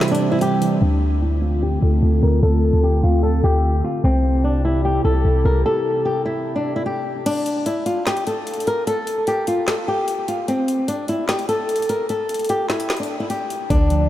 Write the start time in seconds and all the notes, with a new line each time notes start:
Already playing: C3 E3 G3 C4 G4 C5 E5 C6
0.00 C5, snare, clap, closed hi-hat
0.08 D4, closed hi-hat
0.15 closed hi-hat
0.21 C4
0.32 E4
0.41 G3 G4, closed hi-hat
0.61 E3, closed hi-hat
0.82 D2 D3 A3 C4 D4 F4
1.22 E4
1.42 F4
1.63 G4
1.82 D2 A4
2.03 D2
2.23 D2 A#4
2.43 D2 A4
2.73 D2
2.83 G4
3.03 D2 F4
3.23 A4
3.44 D2 G4
3.84 F4
4.04 C2 C3 C4 E4 G4
4.44 D4
4.65 E4
4.85 G4
5.05 C2 A4
5.25 C2
5.45 C2 A#4
5.66 A4
6.05 G4
6.25 E4
6.56 D4
6.76 E4
6.86 G4
7.26 D4, closed hi-hat, crash
7.46 closed hi-hat
7.66 E4, closed hi-hat
7.86 F4, closed hi-hat
8.06 G4, snare, clap, closed hi-hat
8.17 closed hi-hat
8.27 A4, closed hi-hat
8.47 closed hi-hat
8.54 closed hi-hat
8.60 closed hi-hat
8.67 A#4, closed hi-hat
8.87 A4, closed hi-hat
9.07 closed hi-hat
9.27 G4, closed hi-hat
9.47 F4, closed hi-hat
9.67 A4, snare, clap, closed hi-hat
9.88 G4
10.08 closed hi-hat
10.28 F4, closed hi-hat
10.48 C4, closed hi-hat
10.68 closed hi-hat
10.88 D4, closed hi-hat
11.08 E4, closed hi-hat
11.28 G4, snare, clap, closed hi-hat
11.39 closed hi-hat
11.49 A4, closed hi-hat
11.69 closed hi-hat
11.76 closed hi-hat
11.82 closed hi-hat
11.89 A#4, closed hi-hat
12.09 A4, closed hi-hat
12.29 closed hi-hat, open hi-hat
12.34 closed hi-hat
12.39 closed hi-hat
12.44 closed hi-hat
12.49 G4, closed hi-hat
12.69 E4, snare, clap, closed hi-hat
12.80 closed hi-hat
12.89 snare, clap, closed hi-hat
12.97 D4, closed hi-hat
13.03 closed hi-hat
13.20 E4
13.30 G4, closed hi-hat
13.50 closed hi-hat
13.70 D2 D3 D4, kick, closed hi-hat
13.90 F3, closed hi-hat